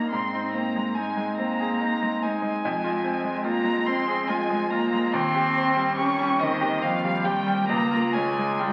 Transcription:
Already playing: G2 A#3 C#4 D#4
0.10 G#2 C4 C6
0.34 D#4
0.54 A#3 C4 A#5
0.76 G#3
0.95 G#3 D#4 G#5
1.17 G#3
1.37 A#3 C4 A#5
1.60 G#4
1.81 D#4
2.02 G#3
2.22 G#3 D#4 G#5
2.42 G#3
2.65 F2
2.84 F4
3.04 C4
3.24 G#3
3.44 A#3 F4 A#5
3.64 G#3
3.86 C4 C6
4.07 G#4
4.28 G#3 F4 G#5
4.50 G#3
4.71 A#3 F4 A#5
4.92 G#3
5.12 D#2 C4 C6
5.35 G4
5.57 C4
5.76 G3
5.97 C#4 G4 C#6
6.19 G3
6.40 D#3 C4 D#5
6.61 G4
6.82 F3 C4 F5
7.05 G3
7.24 G3 G4 G5
7.47 G3
7.68 C#2 A#3 A#5
7.91 F4
8.13 G#3 C#4 G#5
8.39 G#3
8.60 G3 F4 G5

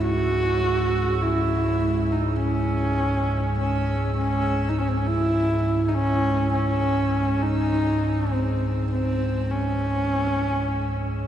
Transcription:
Already playing: C#2 G#2 G#3 C#4 G#4 E6
0.01 F#4
1.22 E4
2.12 D#4
2.40 C#4
3.60 C#4
4.18 C#4
4.69 D#4
4.78 C#4
4.88 C4
4.97 C#4
5.07 E4
5.88 D#4
5.95 C#4
6.53 C#4
7.42 D#4
8.32 C4
8.92 C4
9.51 C#4

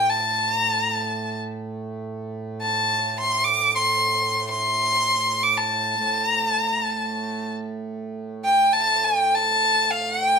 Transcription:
Already playing: A2 A3 G5
0.10 A5
0.55 A#5
0.67 A5
0.81 A#5
0.93 A5
2.62 A5
3.20 C6
3.44 D6
3.76 C6
4.51 C6
5.43 D6
5.57 A5
5.96 A2 A3
6.26 A#5
6.44 A5
6.65 A#5
6.83 A5
8.45 G5
8.73 A5
9.04 G5
9.35 A5
9.91 F5
10.12 F#5
10.25 G5

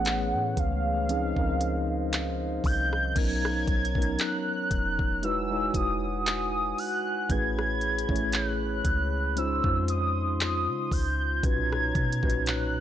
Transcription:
Already playing: A1 E3 A3 B3 C#4 G#4 B4 C#5 F#5
0.05 clap, closed hi-hat
0.34 A2
0.57 C#2 F5, kick, closed hi-hat
1.09 F3 C4 C#4 D#4 G#4 C5 D#5 F5, closed hi-hat
1.36 C#2 F3 C4 C#4 D#4 A#4, kick
1.61 closed hi-hat
2.13 clap, closed hi-hat
2.64 C2 G6, kick, open hi-hat
2.93 cross-stick
3.16 B1 F#3 B3 C#4 D#4 A#4 C#5 A#5 G#6, kick, closed hi-hat, crash
3.45 cross-stick
3.67 B1, kick, closed hi-hat
3.85 closed hi-hat
3.95 F#3 B3 C#4 D#4 A#4, kick
4.02 closed hi-hat
4.19 F#6, clap, closed hi-hat
4.71 E1, kick, closed hi-hat
4.99 kick
5.22 G#3 D#4 E4 F#4 B4 F#5 G#5 E6, closed hi-hat
5.50 G#3 D#4 E4 F#4 C#5
5.74 E1 D#6, kick, closed hi-hat
6.26 D#6, clap, closed hi-hat
6.78 F#6, open hi-hat
7.29 A1 A3 C#4 E4 G#4 B4 C#5 B5 G#6, kick, closed hi-hat
7.59 cross-stick
7.81 closed hi-hat
7.98 closed hi-hat
8.09 A1 A3 C#4 E4 G#4 C#5, kick
8.16 closed hi-hat
8.32 F#6, clap, closed hi-hat
8.85 C#2, kick, closed hi-hat
9.36 G#3 C#4 D#4 F4 C5 C6 E6, closed hi-hat
9.64 F2 G#3 C#4 D#4 F4 C5, kick
9.88 D#6, closed hi-hat
10.40 D#6, clap, closed hi-hat
10.68 C#3
10.91 C#2 G6, kick, open hi-hat
11.43 B1 A#2 C#4 D#4 F#4 B4 C#5 A#5 G#6, kick, closed hi-hat
11.72 cross-stick
11.95 B2, kick, closed hi-hat
12.12 closed hi-hat
12.23 B1 A#2 C#4 D#4 F#4 B4, kick
12.30 closed hi-hat
12.46 F#6, clap, closed hi-hat

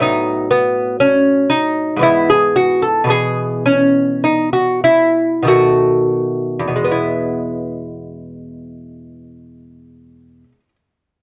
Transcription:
Already playing: A2 F#3
0.00 B3 D#4
0.51 B3
1.00 C#4
1.50 D#4
1.96 G#2 E3
2.01 B3 E4
2.30 G#4
2.56 F#4
2.82 A4
3.04 B2 E3
3.09 B3 G#4
3.66 C#4
4.24 D#4
4.53 F#4
4.84 E4
5.43 B2 D#3
5.47 A3 F#4
6.59 E2
6.68 B2
6.76 G#3
6.84 B3
6.92 E4

